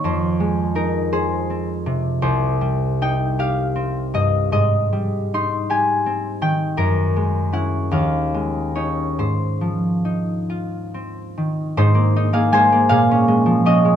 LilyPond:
<<
  \new Staff \with { instrumentName = "Harp" } { \time 6/8 \key aes \major \tempo 4. = 53 <aes' c'' des'' ees''>4 bes'8 c''4. | c''4 g''8 f''4 ees''8 | ees''4 c'''8 aes''4 g''8 | bes'4 ges''8 f''4 des''8 |
c''2. | <ees' c''>8. <aes' f''>16 <c'' aes''>8 <aes' f''>4 <ges' ees''>8 | }
  \new Staff \with { instrumentName = "Harp" } { \time 6/8 \key aes \major <f, c' ees'>8 aes8 ees'8 aes'8 c'8 c8 | c,8 g8 ees'8 g'8 c'8 g,8 | aes,8 g8 ees'8 g'8 c'8 ees8 | ges,8 aes8 <des' fes'>8 ees,8 aes8 <des' ees'>8 |
aes,8 f8 ees'8 f'8 c'8 ees8 | aes,16 bes16 ees'16 bes16 aes16 bes16 bes,16 des'16 aes16 f16 des'16 aes16 | }
>>